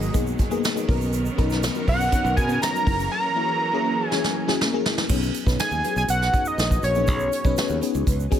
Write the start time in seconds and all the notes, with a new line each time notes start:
Already playing: B2 D#3 F#3 G#3 A#3 B3 D#4 G#4 D#5
0.02 shaker
0.13 B1 F#3 A#3 B3 D#4 G#4, kick, closed hi-hat, shaker
0.27 shaker
0.39 kick, closed hi-hat, shaker
0.50 F#3 A#3 B3 D#4 G#4, shaker
0.64 snare, closed hi-hat, shaker
0.75 F#3 A#3 B3 D#4 G#4, shaker
0.87 B1 F#3 B3 C#4 D#4 A#4, kick, open hi-hat
1.01 shaker
1.13 closed hi-hat, shaker
1.25 shaker
1.37 B1 F#3 B3 C#4 D#4 A#4, kick, closed hi-hat
1.50 snare, shaker
1.63 snare, closed hi-hat, shaker
1.74 F#3 B3 C#4 D#4 A#4, shaker
1.88 B1 F#5, kick, open hi-hat
2.01 shaker
2.11 F#3 B3 C#4 D#4 C#5, kick, closed hi-hat, shaker
2.24 B1, shaker
2.37 B2 G#5, kick, closed hi-hat, shaker
2.48 F#3 B3 C#4 D#4 A#4, shaker
2.62 A#5, snare, closed hi-hat, shaker
2.73 F#3 B3 C#4 D#4 F#4, shaker
2.85 F#1 E3 F#3 A#3 C#4 E4 G#4, kick, open hi-hat
3.00 shaker
3.12 A#5
3.35 F#3 A#3 C#4 E4 G#4
3.73 F#3 A#3 C#4 E4 G#4
4.08 F#3 A#3 C#4 E4 G#4 G#5, snare
4.24 snare
4.47 F#3 A#3 C#4 E4 G#4, snare
4.61 snare
4.73 F#3 A#3 C#4 E4 G#4
4.86 snare
4.98 snare
5.09 B1 F#3 B3 C#4 D#4 G#4, kick, crash, shaker
5.23 shaker
5.34 closed hi-hat, shaker
5.46 B1 F#3 B3 C#4 D#4 B4, kick, snare, shaker
5.59 G#5, snare, closed hi-hat, shaker
5.71 D#2, shaker
5.84 F#3 B3 C#4 D#4 F#4, closed hi-hat, shaker
5.91 G#4
5.96 B1 G#5, shaker
6.08 B1 F#5, closed hi-hat, shaker
6.22 snare, shaker
6.33 F#3 B3 C#4 D#4 G#4, kick, closed hi-hat, shaker
6.45 D#5, shaker
6.58 A#1, snare, closed hi-hat, shaker
6.71 kick, shaker
6.83 A#1 C#5, closed hi-hat, shaker
6.95 F#3 B3 C#4 D#4 G#4, shaker
7.07 B1 F#3 B3 C#4 D#4 G#4, kick, closed hi-hat, shaker
7.20 shaker
7.32 closed hi-hat, shaker
7.45 B1 F#3 B3 C#4 D#4 B4, kick, shaker
7.57 snare, closed hi-hat, shaker
7.69 D#2, shaker
7.81 F#3 B3 C#4 D#4 G#4, closed hi-hat, shaker
7.95 C#2, shaker
8.07 C#2, kick, closed hi-hat, shaker
8.20 shaker
8.31 F#3 B3 C#4 D#4 G#4, kick, closed hi-hat, shaker